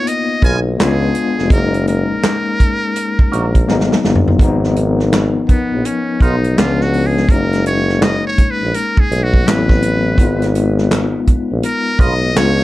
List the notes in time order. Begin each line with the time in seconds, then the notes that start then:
Already playing: A#3 B3 D#4 F4
0.07 D#5, closed hi-hat
0.42 B1 G#3 B3 F4 A#4 G#5, kick, closed hi-hat
0.78 C#2 G#3 B3 D4 F4 G#4, snare, clap, closed hi-hat
1.15 closed hi-hat
1.39 F1, snare
1.49 F#1 G#3 A3 A#4, kick, closed hi-hat
1.54 C#4 D#4
1.58 A#3
1.74 closed hi-hat
1.87 A#4, closed hi-hat
2.12 A#1
2.23 snare, clap, closed hi-hat
2.60 kick, closed hi-hat
2.96 closed hi-hat
3.19 kick
3.32 A#1 A#3 D#4 F#4 A#4, closed hi-hat
3.55 kick, closed hi-hat
3.67 G#1 F#3 A#3 B3 D#4, snare
3.80 snare
3.92 snare
4.05 G1, snare
4.15 floor tom
4.28 floor tom
4.38 G#1 F3 A#4, kick, closed hi-hat
4.42 B3 D#4
4.64 snare
4.76 closed hi-hat
5.00 snare
5.12 snare, clap, closed hi-hat
5.49 A#1 B3, kick, closed hi-hat
5.72 A#1
5.85 C#4, closed hi-hat
6.20 B1 G#3 B3 D#4 F4 A#4, kick, closed hi-hat
6.44 closed hi-hat
6.56 C#2 E3 G#3 B3 D4 F4, snare, clap, closed hi-hat
6.63 F3
6.81 F#4, snare
6.93 open hi-hat
7.07 G#4
7.17 snare
7.27 F#1 G#3 A#3 A#4, kick, closed hi-hat
7.32 C#4 D#4
7.53 snare, closed hi-hat
7.66 C#5, closed hi-hat
7.89 snare
8.02 D#5, snare, clap, closed hi-hat
8.27 C#5
8.38 A#1, kick, closed hi-hat
8.51 B4
8.62 A#1
8.74 A#4, closed hi-hat
8.97 G#4, kick
9.11 B1, closed hi-hat
9.23 F#4
9.34 kick
9.45 A1 F#3 B3 C4 E4 B4, snare, clap, closed hi-hat
9.69 kick, snare
9.82 closed hi-hat
10.16 G#1 G#3 B3, kick, closed hi-hat
10.21 D#4 F4
10.42 snare, closed hi-hat
10.55 closed hi-hat
10.78 snare
10.91 snare, clap, closed hi-hat
11.27 A#1, kick, closed hi-hat
11.51 A#1
11.63 A#4, closed hi-hat
11.99 B1 G#3 B3 F4 A#4 D#5, kick, closed hi-hat
12.35 C#2 G#3 B3 D4 F4 C#5, snare, clap, closed hi-hat
12.60 snare